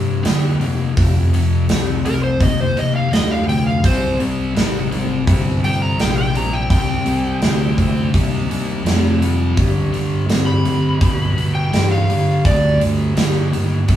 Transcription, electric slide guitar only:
2.06 2.22 A#4 loud
2.24 2.40 C5 medium
2.42 2.58 D#5 medium
2.61 2.76 C5 medium
2.79 2.95 D#5 loud
2.96 3.12 F5 loud
3.13 3.29 D#5 medium
3.31 3.47 F5 medium
3.49 3.65 G5 medium
3.66 3.83 F5 medium
3.85 4.19 C5 medium
5.64 5.81 G5 loud
5.82 5.99 A#5 loud
6.01 6.17 G5 medium
6.18 6.34 G5 medium
6.37 6.53 A#5 medium
6.53 6.70 G5 medium
6.71 8.10 G5 loud
10.46 11.51 B5 medium
11.55 11.90 G5 medium
11.91 12.44 F5 medium
12.46 12.81 D5 loud

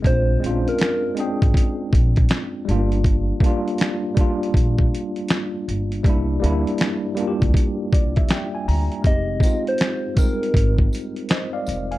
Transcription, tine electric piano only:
0.02 0.36 G#3 medium
0.02 0.37 C4 medium
0.07 0.38 D4 medium
0.07 0.39 F4 medium
0.40 1.05 G#3 medium
0.40 1.06 C4 medium
0.40 0.52 C#4 medium
0.46 1.08 F4 medium
0.50 1.10 D4 medium
1.14 2.36 G#3 medium
1.14 2.37 C4 medium
1.19 2.38 D4 medium
1.19 2.39 G5 medium
2.65 3.30 G3 medium
2.65 2.76 A3 medium
2.69 3.33 D4 medium
2.69 3.33 F4 medium
2.74 3.35 A#3 medium
3.40 4.05 G3 medium
3.40 4.06 A#3 medium
3.40 4.07 D4 medium
3.46 4.08 F4 medium
4.15 5.37 G3 medium
4.15 5.38 A#3 medium
4.19 5.39 D4 medium
4.19 5.40 F4 medium
6.04 6.36 G3 medium
6.04 6.37 A#3 medium
6.08 6.38 D4 medium
6.08 6.39 E4 medium
6.40 7.05 G3 medium
6.40 7.06 A#3 medium
6.44 7.07 D4 medium
6.44 7.08 E4 loud
7.15 8.37 G3 medium
7.15 8.38 A#3 medium
7.15 8.39 D4 medium
7.21 7.27 F4 medium
7.27 8.43 G4 medium
7.93 8.15 D5 medium
8.17 8.29 E5 medium
8.31 8.53 G5 medium
8.55 8.67 G#5 medium
8.68 9.03 A#5 medium
9.02 9.36 G#3 medium
9.02 9.37 C4 medium
9.02 9.38 D#4 medium
9.08 9.39 G4 medium
9.40 10.05 G#3 medium
9.40 10.06 C4 medium
9.44 10.07 D#4 medium
9.44 10.08 F4 medium
10.15 10.24 G3 medium
10.15 11.38 C4 medium
10.15 11.39 D#4 medium
10.21 11.40 G#3 medium
10.21 11.40 A#4 medium
11.30 11.53 C5 medium
11.30 11.53 D#5 medium
11.53 11.89 D5 medium
11.53 11.89 F5 medium
11.91 11.98 F5 soft
11.91 11.98 G#5 medium

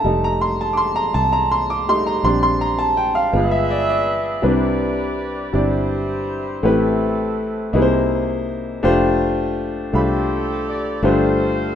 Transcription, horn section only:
3.35 4.41 G#4 medium
3.35 4.41 B4 medium
3.35 4.41 E5 loud
4.45 5.50 G4 medium
4.45 5.50 B4 medium
4.45 5.51 D5 medium
5.55 6.60 E4 medium
5.55 6.60 G4 medium
5.55 6.65 C5 medium
6.66 7.71 C4 medium
6.66 7.71 E4 soft
6.66 7.71 A4 medium
9.95 11.01 G4 medium
9.95 11.00 A4 medium
9.95 10.63 C5 medium
10.68 11.01 D5 medium
11.04 11.75 F4 medium
11.04 11.75 A4 medium
11.04 11.75 C5 medium

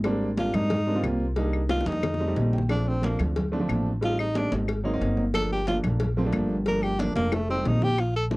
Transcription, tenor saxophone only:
0.39 0.57 F4 medium
0.55 1.04 D#4 loud
1.70 1.89 F4 medium
1.87 2.37 D#4 loud
2.71 2.90 D4 medium
2.88 3.07 C4 medium
3.06 3.21 A#3 medium
4.04 4.19 F4 loud
4.20 4.39 D#4 medium
4.37 4.53 D4 medium
5.35 5.50 A4 loud
5.52 5.67 G4 loud
5.68 5.78 F4 medium
6.68 6.84 A#4 loud
6.83 7.01 G4 loud
6.99 7.15 D4 medium
7.16 7.36 A#3 loud
7.34 7.50 A3 medium
7.50 7.69 C4 medium
7.68 7.85 D#4 medium
7.83 8.02 G4 loud
8.00 8.15 F4 medium
8.16 8.26 A4 loud

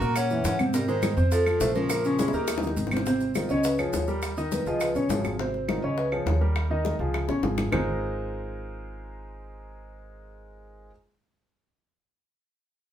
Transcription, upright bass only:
0.01 0.41 A#2 medium
0.44 1.12 G#2 medium
1.17 1.57 F2 medium
1.60 2.28 A#1 medium
2.33 2.74 D#2 medium
2.77 3.44 G#1 medium
3.49 3.90 C#2 medium
3.93 4.61 D#2 medium
4.66 4.93 C#2 medium
4.95 5.09 A#1 medium
5.09 5.77 G#1 medium
5.82 6.23 C#2 medium
6.26 6.94 D#2 medium
6.99 7.26 C#2 medium
7.28 7.42 A#1 medium
7.43 7.69 G#1 medium
7.72 10.90 G#1 medium

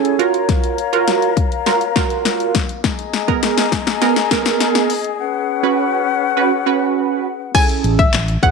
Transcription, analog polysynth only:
0.00 0.19 C#4 loud
0.00 0.19 G#4 medium
0.00 0.19 A4 loud
0.19 0.78 F4 medium
0.19 0.78 F#4 medium
0.19 0.78 A#4 loud
0.93 1.31 F4 loud
0.93 1.31 F#4 medium
0.93 1.31 A#4 loud
1.66 1.80 F4 medium
1.66 1.80 F#4 medium
1.66 1.81 A#4 loud
1.96 2.57 F4 loud
1.96 2.57 F#4 medium
1.96 2.57 A#4 loud
3.28 3.66 B3 loud
3.28 3.66 G#4 medium
3.28 3.66 A#4 loud
4.01 4.15 B3 loud
4.01 4.16 G#4 medium
4.01 4.16 A#4 loud
4.31 4.92 B3 loud
4.31 4.92 G#4 medium
4.31 4.92 A#4 loud
5.63 6.01 C#4 loud
5.63 6.02 F#4 medium
5.63 6.02 B4 loud
6.37 6.51 C#4 loud
6.37 6.51 F#4 medium
6.37 6.51 B4 loud
6.66 7.27 C#4 loud
6.66 7.27 F#4 medium
6.66 7.27 B4 loud
7.55 8.00 C#4 medium
7.55 8.00 E4 medium
7.55 8.00 G#4 medium
7.55 8.00 A4 medium
8.43 8.51 C#4 medium
8.43 8.51 E4 medium
8.43 8.51 G#4 medium
8.43 8.51 B4 medium

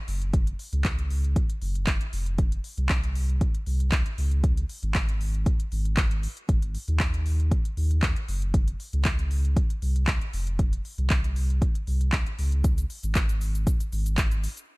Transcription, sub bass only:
0.08 0.54 F#1 loud
0.73 1.36 C#2 medium
1.62 1.98 F#1 loud
2.13 2.59 F1 loud
2.78 3.41 C2 medium
3.66 4.03 C2 medium
4.18 4.65 C#2 loud
4.83 5.47 G#1 medium
5.72 6.27 G#1 loud
6.49 6.77 G#1 loud
6.88 7.52 D#2 medium
7.77 8.14 D#2 medium
8.28 8.75 F#1 loud
8.93 9.57 C#2 medium
9.82 10.19 C2 loud
10.33 10.80 F1 loud
10.98 11.62 C2 medium
11.87 12.24 C2 loud
12.39 12.85 C#2 loud
13.03 13.67 G#1 medium
13.92 14.47 G#1 loud

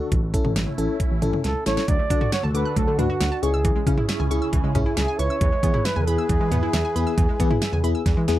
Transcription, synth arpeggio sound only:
1.88 1.96 F#3 medium
1.99 2.07 A3 medium
2.10 2.18 D4 medium
2.21 2.30 F#4 medium
2.32 2.41 F#5 medium
2.43 2.52 A5 medium
2.54 2.63 D6 medium
2.65 2.74 F#6 medium
2.77 2.85 F#3 medium
2.88 2.96 A3 medium
2.99 3.07 D4 medium
3.10 3.18 F#4 medium
3.21 3.29 F#5 medium
3.32 3.40 A5 medium
3.43 3.51 C#6 medium
3.54 3.62 E6 medium
3.65 3.73 E3 medium
3.76 3.84 G#3 medium
3.87 3.95 C#4 medium
3.98 4.06 E4 medium
4.09 4.17 E5 medium
4.20 4.28 G#5 medium
4.31 4.39 C#6 loud
4.42 4.50 E6 medium
4.53 4.61 E3 medium
4.64 4.72 G#3 medium
4.75 4.83 C#4 medium
4.86 4.94 E4 medium
4.97 5.05 E5 medium
5.08 5.16 G#5 medium
5.19 5.27 C#6 medium
5.30 5.38 E6 medium
5.41 5.49 E3 medium
5.52 5.60 G#3 medium
5.63 5.71 B3 medium
5.74 5.82 E4 medium
5.85 5.93 E5 medium
5.96 6.04 G#5 medium
6.07 6.16 B5 loud
6.18 6.27 E6 medium
6.29 6.38 E3 medium
6.41 6.49 G#3 medium
6.52 6.60 B3 medium
6.63 6.71 E4 medium
6.74 6.82 E5 medium
6.85 6.93 G#5 medium
6.96 7.04 B5 medium
7.07 7.15 E6 medium
7.18 7.26 E3 medium
7.29 7.37 G#3 medium
7.40 7.48 B3 medium
7.51 7.59 E4 medium
7.62 7.70 E5 medium
7.73 7.81 G#5 medium
7.84 7.92 B5 medium
7.95 8.03 E6 medium
8.06 8.14 E3 medium
8.17 8.25 G#3 medium
8.28 8.36 B3 medium

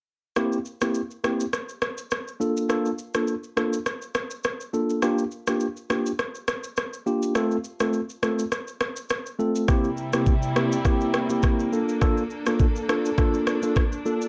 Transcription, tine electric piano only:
0.36 0.57 A#3 medium
0.36 0.57 C4 medium
0.36 0.57 E4 medium
0.36 0.57 G4 loud
0.81 1.00 A#3 medium
0.81 1.00 C4 medium
0.81 1.00 E4 medium
0.81 1.00 G4 medium
1.24 1.44 A#3 medium
1.24 1.44 C4 medium
1.24 1.44 E4 medium
1.24 1.45 G4 medium
2.40 2.67 A#3 medium
2.40 2.67 D4 medium
2.40 2.67 F4 medium
2.40 2.67 A4 medium
2.69 2.90 A#3 medium
2.69 2.90 D4 medium
2.69 2.90 F4 medium
2.69 2.90 A4 loud
3.14 3.33 A#3 medium
3.14 3.33 D4 medium
3.14 3.33 F4 medium
3.14 3.33 A4 medium
3.57 3.77 A#3 medium
3.57 3.77 D4 medium
3.57 3.77 F4 medium
3.57 3.78 A4 medium
4.73 5.00 A#3 medium
4.73 5.00 D4 medium
4.73 5.00 F4 medium
4.73 5.01 A4 medium
5.02 5.23 A#3 medium
5.02 5.23 D4 medium
5.02 5.23 F4 medium
5.02 5.23 G4 loud
5.47 5.66 A#3 medium
5.47 5.66 D4 medium
5.47 5.66 F4 medium
5.47 5.66 G4 medium
5.90 6.10 A#3 medium
5.90 6.10 D4 medium
5.90 6.10 F4 medium
5.90 6.11 G4 medium
7.06 7.33 A#3 medium
7.06 7.33 D4 medium
7.06 7.33 F4 medium
7.06 7.34 G4 medium
7.35 7.56 A3 medium
7.35 7.56 C4 medium
7.35 7.56 F4 medium
7.35 7.56 A4 loud
7.80 7.99 A3 medium
7.80 7.99 C4 medium
7.80 7.99 F4 medium
7.80 7.99 A4 medium
8.22 8.43 A3 medium
8.22 8.43 C4 medium
8.22 8.43 F4 medium
8.22 8.44 A4 medium
9.39 9.66 A3 medium
9.39 9.66 C4 medium
9.39 9.66 F4 medium
9.39 9.66 A4 medium
9.68 9.89 A#3 medium
9.68 9.89 C4 medium
9.68 9.89 E4 medium
9.68 9.89 G4 loud
10.13 10.32 A#3 medium
10.13 10.32 C4 medium
10.13 10.32 E4 medium
10.13 10.32 G4 medium
10.55 10.76 A#3 medium
10.55 10.76 C4 medium
10.55 10.76 E4 medium
10.55 10.77 G4 medium
10.84 11.26 A#3 medium
10.84 11.26 C4 medium
10.84 11.26 E4 medium
10.84 11.26 G4 loud
11.30 11.69 A#3 medium
11.30 11.69 C4 medium
11.30 11.69 E4 medium
11.30 11.69 G4 medium
11.72 11.99 A#3 medium
11.72 11.99 D4 medium
11.72 11.99 F4 medium
11.72 11.99 A4 medium
12.01 12.22 A#3 medium
12.01 12.22 D4 medium
12.01 12.22 F4 medium
12.01 12.22 A4 loud
12.46 12.65 A#3 medium
12.46 12.65 D4 medium
12.46 12.65 F4 medium
12.46 12.65 A4 medium
12.89 13.09 A#3 medium
12.89 13.09 D4 medium
12.89 13.09 F4 medium
12.89 13.10 A4 medium
13.18 13.59 A#3 medium
13.18 13.59 D4 medium
13.18 13.59 F4 medium
13.18 13.59 A4 loud
13.63 13.82 A#3 medium
13.63 13.82 D4 medium
13.63 13.82 F4 medium
13.63 13.82 A4 medium
14.05 14.26 A#3 medium
14.05 14.26 D4 medium
14.05 14.26 F4 medium
14.05 14.26 A4 medium

